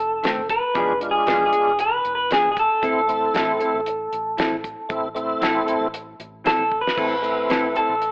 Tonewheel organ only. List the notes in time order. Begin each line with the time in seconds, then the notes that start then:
0.74 G#3 D4 F4
1.00 G#3 D4 F4
2.82 A3 C4 E4
3.08 A3 C4 E4
4.89 A3 C4 E4
5.15 A3 C4 E4
6.96 A3 C4 E4
7.22 A3 C4 E4